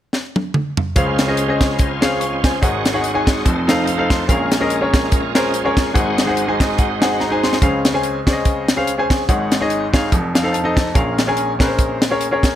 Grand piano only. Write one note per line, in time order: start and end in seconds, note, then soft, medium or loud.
0.96 2.59 C#2 medium
0.96 2.59 C#3 medium
0.96 1.21 C#4 medium
0.96 1.21 G#4 medium
0.96 1.22 C5 medium
0.96 1.22 F5 medium
1.27 1.43 C#4 medium
1.27 1.43 G#4 medium
1.27 1.43 C5 medium
1.27 1.43 D#5 medium
1.48 1.87 C#4 medium
1.48 1.87 G#4 medium
1.48 1.87 C5 medium
1.48 1.88 D#5 medium
2.01 2.23 C#4 medium
2.01 2.23 G#4 medium
2.01 2.21 C5 medium
2.01 2.19 F5 medium
2.20 2.43 F5 medium
2.20 2.42 C#6 medium
2.44 2.84 C5 medium
2.44 2.84 G#5 medium
2.61 3.42 G#1 medium
2.61 3.42 G#2 medium
2.61 2.87 D#4 medium
2.61 2.88 G#4 medium
2.61 2.88 C#5 medium
2.61 2.88 F#5 medium
2.93 3.09 D#4 medium
2.93 3.09 G#4 medium
2.93 3.09 C#5 medium
2.93 3.10 F#5 medium
3.14 3.45 D#4 medium
3.14 3.45 G#4 medium
3.14 3.45 C#5 medium
3.14 3.45 G#5 medium
3.45 4.24 F1 medium
3.45 4.24 F2 medium
3.67 3.89 D#4 medium
3.67 3.89 A4 medium
3.67 3.90 C5 medium
3.67 3.85 F5 medium
3.87 3.97 F5 medium
3.98 4.21 D#4 medium
3.98 4.21 A4 medium
3.98 4.22 C5 medium
3.98 4.22 F5 medium
4.10 4.27 C6 medium
4.28 5.91 A#1 medium
4.28 5.91 A#2 medium
4.28 4.54 C#4 medium
4.28 4.54 G#4 medium
4.28 4.54 A#4 medium
4.28 4.55 F5 medium
4.60 4.76 C#4 medium
4.60 4.76 G#4 medium
4.60 4.76 A#4 medium
4.60 4.76 D#5 medium
4.81 5.20 C#4 medium
4.81 5.20 G#4 medium
4.81 5.20 A#4 medium
4.81 5.21 C#5 medium
5.35 5.56 C#4 medium
5.35 5.56 G#4 medium
5.35 5.56 A#4 medium
5.35 5.57 C5 medium
5.64 5.88 C#4 medium
5.64 5.88 G#4 medium
5.64 5.88 A#4 medium
5.64 5.88 C#5 medium
5.93 7.57 G#1 medium
5.93 7.57 G#2 medium
5.93 6.20 D#4 medium
5.93 6.20 G#4 medium
5.93 6.20 C5 medium
5.93 6.20 F#5 medium
6.26 6.42 D#4 medium
6.26 6.42 G#4 medium
6.26 6.42 C5 medium
6.26 6.43 F#5 medium
6.47 6.86 D#4 medium
6.47 6.87 G#4 medium
6.47 6.87 C5 medium
6.47 6.87 G#5 medium
6.61 6.78 D#5 medium
6.79 7.00 F#5 medium
7.01 7.23 D#4 medium
7.01 7.23 G#4 medium
7.01 7.23 C5 medium
7.01 7.23 F#5 medium
7.01 7.19 G#5 medium
7.20 7.42 A#5 medium
7.31 7.54 D#4 medium
7.31 7.55 G#4 medium
7.31 7.55 C5 medium
7.31 7.55 G#5 medium
7.44 7.61 C6 medium
7.62 9.25 C#2 medium
7.62 9.25 C#3 medium
7.62 7.87 C#4 medium
7.62 7.88 G#4 medium
7.62 7.88 C5 medium
7.62 7.88 F5 medium
7.94 8.18 C#4 medium
7.94 8.18 G#4 medium
7.94 8.18 C5 medium
7.94 8.18 G#5 medium
8.27 8.65 C#4 medium
8.27 8.65 G#4 medium
8.27 8.65 C5 medium
8.27 8.32 D5 medium
8.33 8.68 D#5 medium
8.76 8.92 C#4 medium
8.76 8.92 G#4 medium
8.76 8.92 C5 medium
8.76 8.92 F5 medium
8.98 9.21 C#4 medium
8.98 9.21 G#4 medium
8.98 9.22 C5 medium
8.98 9.22 G#5 medium
9.29 10.08 G#1 medium
9.29 10.08 G#2 medium
9.29 9.54 D#4 medium
9.29 9.54 G#4 medium
9.29 9.54 C#5 medium
9.29 9.54 F#5 medium
9.60 9.84 D#4 medium
9.60 9.84 G#4 medium
9.60 9.85 C#5 medium
9.60 9.85 D#5 medium
9.93 10.11 D#4 medium
9.93 10.12 G#4 medium
9.93 10.12 C#5 medium
9.93 10.12 F5 medium
10.12 10.91 F1 medium
10.12 10.91 F2 medium
10.35 10.43 F5 medium
10.43 10.58 D#4 medium
10.43 10.59 A4 medium
10.43 10.59 C5 medium
10.43 10.59 F5 medium
10.53 10.75 A5 medium
10.64 10.87 D#4 medium
10.64 10.87 A4 medium
10.64 10.88 C5 medium
10.64 10.88 D#5 medium
10.76 10.93 A5 medium
10.94 12.55 A#1 medium
10.94 12.55 A#2 medium
10.94 11.20 C#4 medium
10.94 11.21 G#4 medium
10.94 11.21 A#4 medium
10.94 11.21 F5 medium
11.27 11.51 C#4 medium
11.27 11.51 G#4 medium
11.27 11.51 A#4 medium
11.27 11.52 G#5 medium
11.59 11.98 C#4 medium
11.59 11.98 G#4 medium
11.59 11.98 A#4 medium
11.59 11.65 B4 medium
11.65 12.01 C5 medium
12.10 12.25 C#4 medium
12.10 12.26 G#4 medium
12.10 12.26 A#4 medium
12.10 12.26 C#5 medium
12.31 12.54 C#4 medium
12.31 12.55 G#4 medium
12.31 12.55 A#4 medium
12.31 12.55 C#5 medium